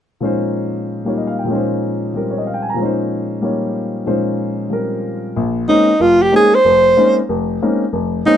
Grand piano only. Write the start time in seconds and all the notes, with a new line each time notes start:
0.20 A#2 F3 G#3 C#4 D#4
0.25 C5
1.05 G3 A#3 D#4 F4 C#5
1.18 D#5
1.27 F5
1.39 G5
1.44 A#2 F3
1.48 G#3 C#4
1.52 D#4 C5
2.14 F3 G3 C4 A#4
2.31 C#5
2.38 D#5
2.47 F5
2.54 G5
2.62 G#5
2.70 A#5
2.74 A#2 F3
2.79 G#3 C#4
2.83 D#4 C5
3.41 G3 A#3 D#4 F4 C#5
4.06 A#2 F3 G#3 C#4 D#4 C5
4.70 F3 G3 C4 A#4
5.36 A#1
5.68 G#3 A#3 C4 C#4 D#4
6.00 F1
6.32 G#3 A#3 C4 C#4 D#4
6.65 F1
6.97 G#3 A#3 C4 C#4 D#4
7.29 F1
7.62 G#3 A#3 C4 C#4 D#4
7.93 F1
8.26 G#3 A#3 C4 C#4 D#4